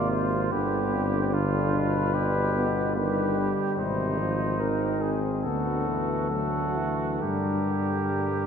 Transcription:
Already playing: G#1 C3 A#3 F4 D5
0.11 C5
0.52 G1 D3 B3 G4 B4
0.93 C4
1.33 D3 D4 F4 B4
1.74 B2
2.14 D4 G4
2.56 B3
2.95 D#3 G3 G4 B4
3.38 D3
3.77 G#1 C3 D#4 C5
4.19 F3
4.60 D#3 C4 A#4
5.01 G#4
5.44 D2 D3 B3 F#4 A4
5.87 E3
6.30 F#3 A3 F#4
6.76 E3
7.21 G2 D3 G3 G4 A#4

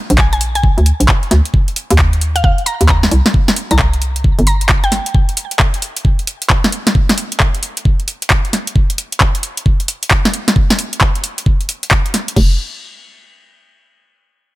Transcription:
0.10 A#1, closed hi-hat
0.18 G#5, kick, clap
0.33 G#5, closed hi-hat
0.41 open hi-hat
0.55 G#5, closed hi-hat
0.64 kick
0.78 D2, closed hi-hat
0.86 open hi-hat
1.00 A#1, closed hi-hat
1.09 kick, clap
1.23 closed hi-hat
1.31 D2, snare, open hi-hat
1.45 closed hi-hat
1.54 kick
1.68 closed hi-hat
1.76 open hi-hat
1.90 D#2, closed hi-hat
1.99 kick, clap
2.13 closed hi-hat
2.21 open hi-hat
2.36 F5, closed hi-hat
2.44 F5, kick
2.58 closed hi-hat
2.66 A#5, open hi-hat
2.81 D#2, closed hi-hat
2.89 A#5, kick, clap
3.03 snare, closed hi-hat
3.11 C2, open hi-hat
3.26 snare, closed hi-hat
3.34 kick
3.48 snare, closed hi-hat
3.56 open hi-hat
3.71 C2 A#5, closed hi-hat
3.79 kick, clap
3.94 closed hi-hat
4.02 open hi-hat
4.16 closed hi-hat
4.24 kick
4.39 G1, closed hi-hat
4.47 A#5, open hi-hat
4.61 closed hi-hat
4.69 kick, clap
4.84 G5, closed hi-hat
4.92 snare, open hi-hat
5.06 closed hi-hat
5.15 kick
5.29 closed hi-hat
5.37 open hi-hat
5.51 closed hi-hat
5.60 kick, clap
5.74 closed hi-hat
5.82 open hi-hat
5.97 closed hi-hat
6.05 kick
6.19 closed hi-hat
6.27 open hi-hat
6.42 closed hi-hat
6.50 kick, clap
6.64 snare, closed hi-hat
6.72 open hi-hat
6.87 snare, closed hi-hat
6.95 kick
7.09 snare, closed hi-hat
7.18 open hi-hat
7.32 closed hi-hat
7.40 kick, clap
7.55 closed hi-hat
7.63 open hi-hat
7.77 closed hi-hat
7.85 kick
8.00 closed hi-hat
8.08 open hi-hat
8.22 closed hi-hat
8.30 kick, clap
8.45 closed hi-hat
8.53 snare, open hi-hat
8.67 closed hi-hat
8.76 kick
8.90 closed hi-hat
8.98 open hi-hat
9.12 closed hi-hat
9.21 kick, clap
9.35 closed hi-hat
9.43 open hi-hat
9.57 closed hi-hat
9.66 kick
9.80 closed hi-hat
9.88 open hi-hat
10.03 closed hi-hat
10.11 kick, clap
10.25 snare, closed hi-hat
10.34 open hi-hat
10.48 snare, closed hi-hat
10.56 kick
10.70 snare, closed hi-hat
10.79 open hi-hat
10.93 closed hi-hat
11.01 kick, clap
11.15 closed hi-hat
11.24 open hi-hat
11.38 closed hi-hat
11.46 kick
11.61 closed hi-hat
11.69 open hi-hat
11.83 closed hi-hat
11.91 kick, clap
12.06 closed hi-hat
12.14 snare, open hi-hat
12.28 closed hi-hat
12.36 F1, kick, crash

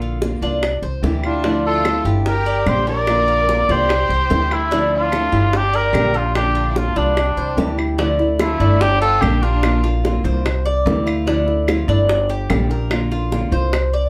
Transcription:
Already playing: A#1 D3 A#3 D4 F4
0.02 F4
0.22 D3 A#3 D4 F4, high bongo
0.41 C2 A#3 D4 F4, high bongo
0.63 muted nylon-string guitar stroke, high bongo, claves
0.82 C2 C5, high bongo
1.03 D2 C3 E3 G3 D4 E4 G4, high bongo, low bongo
1.23 G3 D4 E4 F4, high bongo, claves
1.43 D3 F3 A3 D4 E4, high bongo
1.65 F4 A4
1.85 F3 A3 D4 E4 A4, high bongo, claves
2.05 G1 F3 A3 D4 E4 G4, high bongo
2.26 G4 A#4, muted nylon-string guitar stroke, high bongo
2.46 D5, high bongo
2.66 A#1 D3 G3 A#3 D4 G4 C5, high bongo, low bongo, claves
2.87 A#3 D4 G4 A#4 D5, high bongo
3.07 D3 A#3 D4 F4, high bongo, claves
3.28 F4
3.49 D3 A#3 D4 F4, high bongo
3.69 C2 A#3 D4 F4 G4 C5, high bongo
3.89 muted nylon-string guitar stroke, high bongo, claves
4.09 C2 C5, high bongo
4.30 D2 C3 E3 G3 D4 E4 G4, high bongo, low bongo
4.51 G3 A3 D4 E4, high bongo, claves
4.71 D3 F3 A3 D4 E4, high bongo
4.92 D4 F4
5.12 F3 A3 D4 E4 A4, high bongo, claves
5.32 G1 F3 A3 D4 E4 G4, high bongo
5.53 D4 G4, muted nylon-string guitar stroke, high bongo
5.73 G4 A#4 D5, high bongo
5.93 A#1 D3 G3 A#3 D4 G4, high bongo, low bongo, claves
6.14 A#3 D4 F4 G4 A#4, high bongo
6.35 D3 A#3 D4 F4 G4, high bongo, claves
6.55 F4
6.71 E4 G4
6.76 D3 A#3 D4 F4, high bongo
6.96 C2 G3 A#3 D4 F4, high bongo
7.16 muted nylon-string guitar stroke, high bongo, claves
7.37 C2 C5, high bongo
7.57 D2 C3 E3 G3 D4 E4 G4, high bongo, low bongo
7.78 G3 D4 E4, high bongo, claves
7.98 D3 F3 A3 D4 E4, high bongo
8.19 A3 D4 E4, high bongo
8.39 D3 F3 A3 D4 E4 F4, high bongo, claves
8.60 G1 A3 D4 E4, high bongo
8.80 D4 G4, muted nylon-string guitar stroke, high bongo
9.00 F4 G4 A4, high bongo
9.21 A#1 D3 G3 A#3 D4 G4, high bongo, low bongo, claves
9.41 D4 F4 G4 A#4
9.45 A#3
9.63 D3 A#3 D4 F4, high bongo, claves
9.83 A#3 D4 F4, high bongo
10.03 D3 A#3 D4 F4, high bongo
10.24 C2 A#3 D4 F4 C5, high bongo
10.45 muted nylon-string guitar stroke, high bongo, claves
10.65 D5, high bongo
10.85 D2 C3 E3 G3 D4 E4, high bongo, low bongo
11.06 G3 D4 E4 F4, claves
11.26 D3 F3 A3 D4 E4, high bongo
11.46 A3 D4 E4, high bongo
11.67 D3 F3 A3 D4 E4 F4, high bongo, claves
11.88 G1 A3 D4 E4, high bongo
12.08 muted nylon-string guitar stroke, high bongo
12.29 G4, high bongo
12.49 A#1 D3 G3 A#3 D4 G4, high bongo, low bongo, claves
12.69 A#3 D4 G4 A#4
12.90 D3 A#3 D4 F4, high bongo, claves
13.11 A#3 D4 F4, high bongo
13.32 D3 A#3 D4 F4, high bongo
13.52 C2 A#3 D4 F4 C5, high bongo
13.73 muted nylon-string guitar stroke, high bongo, claves
13.93 D5, high bongo

